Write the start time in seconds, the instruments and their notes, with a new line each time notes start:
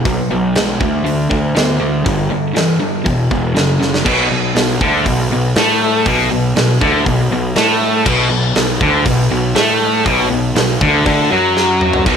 0.05 picked electric bass B1, distorted electric guitar B2 F#3, kick, open hi-hat
0.30 picked electric bass B1, distorted electric guitar B2 F#3
0.55 distorted electric guitar B2 G#3, snare, open hi-hat
0.80 picked electric bass D2, distorted electric guitar D3 A3, kick
1.05 distorted electric guitar D3 A3, open hi-hat
1.30 picked electric bass D2, distorted electric guitar D3 A3, kick
1.55 distorted electric guitar D3 B3, snare, open hi-hat
1.80 distorted electric guitar D3 A3
2.05 picked electric bass G1, distorted electric guitar G2 D3, kick, open hi-hat
2.30 distorted electric guitar G2 D3
2.54 distorted electric guitar G2 E3, snare, open hi-hat
2.80 distorted electric guitar G2 D3
3.04 picked electric bass E1, distorted electric guitar E2 B2, kick, open hi-hat
3.31 picked electric bass E1, distorted electric guitar E2 B2, kick
3.55 picked electric bass F#1, distorted electric guitar F#2 C#3, snare, open hi-hat
3.80 distorted electric guitar F#2 C#3, snare
3.94 snare
4.05 picked electric bass B1, distorted electric guitar B2, kick, crash
4.30 picked electric bass B1, distorted electric guitar B2
4.55 picked electric bass B1, distorted electric guitar B2, snare, open hi-hat
4.81 picked electric bass D2, distorted electric guitar D3, kick
5.06 picked electric bass B1, distorted electric guitar B2, kick, open hi-hat
5.31 picked electric bass B1, distorted electric guitar B2
5.56 picked electric bass A2, distorted electric guitar A3, snare, open hi-hat
6.06 picked electric bass B1, distorted electric guitar B2, kick, open hi-hat
6.31 picked electric bass B1, distorted electric guitar B2
6.56 picked electric bass B1, distorted electric guitar B2, snare, open hi-hat
6.81 picked electric bass D2, distorted electric guitar D3, kick
7.06 picked electric bass B1, distorted electric guitar B2, kick, open hi-hat
7.31 picked electric bass B1, distorted electric guitar B2
7.56 picked electric bass A2, distorted electric guitar A3, snare, open hi-hat
8.06 picked electric bass B1, distorted electric guitar B2, kick, crash
8.30 picked electric bass B1, distorted electric guitar B2
8.55 picked electric bass B1, distorted electric guitar B2, snare, open hi-hat
8.81 picked electric bass D2, distorted electric guitar D3, kick
9.06 picked electric bass B1, distorted electric guitar B2, kick, open hi-hat
9.31 picked electric bass B1, distorted electric guitar B2
9.55 picked electric bass A2, distorted electric guitar A3, snare, open hi-hat
10.05 picked electric bass B1, distorted electric guitar B2, kick, open hi-hat
10.30 picked electric bass B1, distorted electric guitar B2
10.55 picked electric bass B1, distorted electric guitar B2, snare, open hi-hat
10.81 picked electric bass D2, distorted electric guitar D3, kick
11.06 picked electric bass D2, distorted electric guitar D3, kick, open hi-hat
11.32 picked electric bass F#2, distorted electric guitar F#3
11.57 snare
11.81 mid tom
11.93 floor tom
12.06 picked electric bass B1, distorted electric guitar B2 F#3, kick, crash